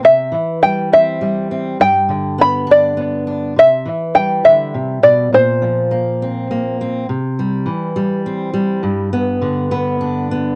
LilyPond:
<<
  \new Staff \with { instrumentName = "Five-string banjo" } { \time 6/8 \key c \major \tempo 4. = 68 e''4 g''8 e''4. | g''4 b''8 d''4. | e''4 g''8 e''4 d''8 | c''2 r4 |
r2. | r2. | }
  \new Staff \with { instrumentName = "Steel-string acoustic guitar" } { \clef bass \time 6/8 \key c \major << { r4 g8 c'8 g8 c'8 | r4 b8 d'8 b8 d'8 | r4 g2 | r4 bes8 c'8 bes8 c'8 |
r8 g4 g8 c'8 g8~ | g8 b4 b8 d'8 b8 | } \\ { c8 e2~ e8 | g,8 d2~ d8 | c8 e4 d8 c8 b,8 | bes,8 f2~ f8 |
c4 e2 | g,4 d2 | } >> }
>>